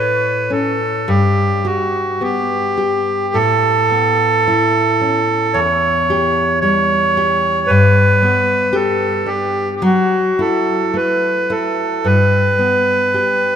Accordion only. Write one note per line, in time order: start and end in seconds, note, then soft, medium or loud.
0.00 0.52 B4 medium
0.52 1.10 A4 medium
1.09 1.67 G4 medium
1.65 2.23 F#4 medium
2.22 3.37 G4 medium
3.34 5.60 A4 medium
5.54 6.59 C#5 medium
6.61 7.71 C#5 medium
7.67 8.76 B4 medium
8.74 9.29 A4 medium
9.27 9.75 G4 medium
9.76 9.83 G4 soft
9.84 10.41 F#4 medium
10.41 10.97 A4 medium
10.96 11.52 B4 medium
11.51 12.07 A4 medium
12.05 13.56 B4 medium